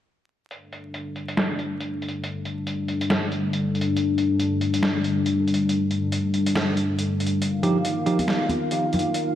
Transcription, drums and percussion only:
0.51 closed hi-hat
0.73 closed hi-hat
0.94 closed hi-hat
1.16 closed hi-hat
1.28 closed hi-hat
1.37 snare
1.59 closed hi-hat
1.80 closed hi-hat
2.02 closed hi-hat
2.08 closed hi-hat
2.24 closed hi-hat
2.45 closed hi-hat
2.67 closed hi-hat
2.88 closed hi-hat
3.01 closed hi-hat
3.10 snare
3.32 closed hi-hat
3.53 closed hi-hat
3.75 closed hi-hat
3.81 closed hi-hat
3.96 closed hi-hat
4.18 closed hi-hat
4.40 closed hi-hat
4.61 closed hi-hat
4.74 closed hi-hat
4.83 snare
5.04 closed hi-hat
5.26 closed hi-hat
5.48 closed hi-hat
5.54 closed hi-hat
5.69 closed hi-hat
5.91 closed hi-hat
6.12 closed hi-hat
6.34 closed hi-hat
6.46 closed hi-hat
6.55 snare
6.77 closed hi-hat
6.99 closed hi-hat
7.20 closed hi-hat
7.26 closed hi-hat
7.42 closed hi-hat
7.63 closed hi-hat
7.85 closed hi-hat
8.06 closed hi-hat
8.19 closed hi-hat, high conga
8.28 snare
8.49 closed hi-hat, high conga
8.71 closed hi-hat
8.93 closed hi-hat, low conga
8.99 closed hi-hat
9.14 closed hi-hat

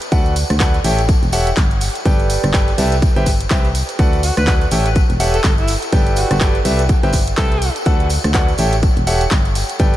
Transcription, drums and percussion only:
0.02 closed hi-hat, tambourine
0.12 kick, closed hi-hat, tambourine
0.26 closed hi-hat, tambourine
0.36 open hi-hat, tambourine
0.50 cross-stick, closed hi-hat, tambourine
0.60 kick, clap, closed hi-hat, tambourine
0.74 closed hi-hat, tambourine
0.84 open hi-hat, tambourine
0.99 closed hi-hat, tambourine
1.09 kick, closed hi-hat, tambourine
1.23 closed hi-hat, tambourine
1.32 open hi-hat, tambourine
1.47 closed hi-hat, tambourine
1.57 kick, clap, closed hi-hat, tambourine
1.71 closed hi-hat, tambourine
1.81 open hi-hat, tambourine
1.95 closed hi-hat, tambourine
2.05 kick, closed hi-hat, tambourine
2.20 closed hi-hat, tambourine
2.30 open hi-hat, tambourine
2.43 cross-stick, closed hi-hat, tambourine
2.54 kick, clap, closed hi-hat, tambourine
2.68 closed hi-hat, tambourine
2.78 open hi-hat, tambourine
2.92 closed hi-hat, tambourine
3.02 kick, closed hi-hat, tambourine
3.16 closed hi-hat, tambourine
3.26 kick, open hi-hat, tambourine
3.40 closed hi-hat, tambourine
3.50 kick, clap, closed hi-hat, tambourine
3.65 closed hi-hat, tambourine
3.75 open hi-hat, tambourine
3.89 closed hi-hat, tambourine
3.99 kick, closed hi-hat, tambourine
4.13 closed hi-hat, tambourine
4.23 open hi-hat, tambourine
4.37 cross-stick, closed hi-hat, tambourine
4.47 kick, clap, closed hi-hat, tambourine
4.61 closed hi-hat, tambourine
4.71 open hi-hat, tambourine
4.86 closed hi-hat, tambourine
4.95 kick, closed hi-hat, tambourine
5.10 closed hi-hat, tambourine
5.20 open hi-hat, tambourine
5.34 closed hi-hat, tambourine
5.43 kick, clap, closed hi-hat, tambourine
5.57 closed hi-hat, tambourine
5.68 open hi-hat, tambourine
5.82 closed hi-hat, tambourine
5.92 kick, closed hi-hat, tambourine
6.06 closed hi-hat, tambourine
6.16 open hi-hat, tambourine
6.31 cross-stick, closed hi-hat, tambourine
6.41 kick, clap, closed hi-hat, tambourine
6.55 closed hi-hat, tambourine
6.65 open hi-hat, tambourine
6.79 closed hi-hat, tambourine
6.89 kick, closed hi-hat, tambourine
7.03 closed hi-hat, tambourine
7.13 kick, open hi-hat, tambourine
7.27 closed hi-hat, tambourine
7.37 kick, clap, closed hi-hat, tambourine
7.51 closed hi-hat, tambourine
7.62 open hi-hat, tambourine
7.76 closed hi-hat, tambourine
7.85 kick, closed hi-hat, tambourine
8.00 closed hi-hat, tambourine
8.10 open hi-hat, tambourine
8.24 cross-stick, closed hi-hat, tambourine
8.34 kick, clap, closed hi-hat, tambourine
8.48 closed hi-hat, tambourine
8.58 open hi-hat, tambourine
8.72 closed hi-hat, tambourine
8.83 kick, closed hi-hat, tambourine
8.97 closed hi-hat, tambourine
9.07 open hi-hat, tambourine
9.21 closed hi-hat, tambourine
9.31 kick, clap, closed hi-hat, tambourine
9.45 closed hi-hat, tambourine
9.55 open hi-hat, tambourine
9.69 closed hi-hat, tambourine
9.79 kick, closed hi-hat, tambourine
9.94 closed hi-hat

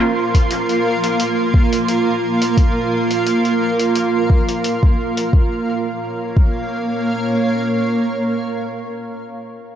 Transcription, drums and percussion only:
0.35 kick, closed hi-hat
0.51 closed hi-hat
0.69 closed hi-hat
1.04 closed hi-hat
1.20 closed hi-hat
1.54 kick
1.73 closed hi-hat
1.88 closed hi-hat
2.42 closed hi-hat
2.57 kick, closed hi-hat
3.11 closed hi-hat
3.27 closed hi-hat
3.45 closed hi-hat
3.79 closed hi-hat
3.95 closed hi-hat
4.30 kick
4.49 closed hi-hat
4.64 closed hi-hat
4.83 kick
5.17 closed hi-hat
5.33 kick
6.37 kick

